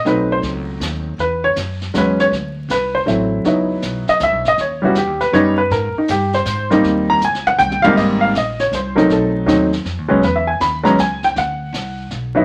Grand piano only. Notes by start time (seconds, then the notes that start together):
0.05 F#3 A3 C4 D#4 B4
0.32 C5
1.20 B4
1.44 C#5
1.94 F#3 G#3 B3 C#4 B4
2.20 C#5
2.71 B4
2.95 C5
3.06 F#3 A3 C4 E4
3.45 F#3 B3 D#4 E4
4.09 D#5
4.23 E5
4.48 D#5
4.61 C#5
4.82 G3 B3 C#4 E4 F#4
4.98 G4
5.21 B4
5.33 G3 B3 C#4 D#4 C#5
5.58 B4
5.72 A#4
5.98 D#4
6.11 G4
6.34 C5
6.70 G3 A#3 C4 D#4
7.10 A#5
7.25 G#5
7.47 F#5
7.59 G5
7.82 G#2 G3 A#3 C4 F5
7.86 D#4
7.97 D#5
8.21 F5
8.37 D#5
8.60 C#5
8.75 C5
8.95 F#3 A3 C4 D#4 A#4
9.12 A4
9.46 F#3 A3 C4 D#4
10.08 F#3 G#3 B3 C#4
10.24 B4
10.36 E5
10.47 G#5
10.61 B5
10.83 F#3 G#3 B3 C#4 A#5
11.00 G#5
11.24 G5
11.38 F#5
12.35 F#3 B3 D#4 E4